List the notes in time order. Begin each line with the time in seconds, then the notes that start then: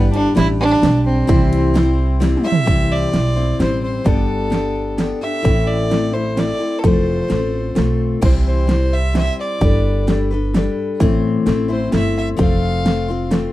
Already playing: G1 G3 D4 G4 B4
0.12 D4, ride
0.35 A1 G3 D4 E4 G4 B4, snare, ride
0.60 D4
0.82 B1 G3 D4 G4 B4, snare, ride
1.06 C4
1.27 C2 C3 E3 G3 C4 E4 C5, kick, ride
1.53 ride
1.74 G3 C4 E4 C5, snare, ride
2.20 G3 C4 E4 C5, snare, ride
2.37 mid tom
2.43 G3 C4 E4 C5 E5
2.52 floor tom
2.65 C2 C3 E3 G3 C4 E4 C5, kick, closed hi-hat
2.92 D5
3.12 B1 G3 C4 E4 C5, snare, closed hi-hat
3.36 G3 C4 E4 C5
3.59 A1 G3 C4 E4 C5, snare, closed hi-hat
3.84 C5
4.04 G1 G3 B3 D4 G4 A4, kick, closed hi-hat
4.50 B3 D4 G4 A4, snare, closed hi-hat
4.98 B3 D4 G4 A4, snare, closed hi-hat
5.21 D4 G4 A4 E5
5.42 A1 A2 E3 A3 C4 E4 A4, kick, closed hi-hat
5.67 D5
5.90 A3 C4 E4 A4, snare, closed hi-hat
6.13 A3 C4 E4 A4 C5
6.37 A3 C4 E4 A4 D5, snare, closed hi-hat
6.59 A3 C4 E4 A4
6.79 A4
6.84 F1 F3 A3 C4 F4 A4 C5, kick, closed hi-hat
7.28 A1 A3 C4 F4 A4, snare, closed hi-hat
7.75 B1 A3 C4 F4 A4, snare, closed hi-hat
8.21 C2 C3 E3 G3 C4 E4 C5, kick, closed hi-hat, crash
8.47 C5
8.67 G3 C4 E4 C5, snare, closed hi-hat
8.93 E5
9.13 G3 C4 E4 C5, snare, closed hi-hat
9.17 E5
9.40 D5
9.61 G1 G3 D4 A4 B4, kick, closed hi-hat
10.07 G3 D4 A4 B4, snare, closed hi-hat
10.31 D4 A4 B4
10.54 G3 D4 A4 B4, snare, closed hi-hat
11.00 A1 A2 E3 A3 C4 E4 C5, kick, closed hi-hat
11.46 A1 A3 C4 E4 C5, snare, closed hi-hat
11.68 A3 C4 E4 C5
11.92 G1 A3 C4 E4 C5 E5, snare, closed hi-hat
12.18 E5
12.37 F1 F3 A3 C4 F4 C5, kick, closed hi-hat
12.41 F5
12.85 A3 C4 F4 C5, snare, closed hi-hat
13.08 C4 F4 C5
13.31 A3 C4 F4 C5, snare, closed hi-hat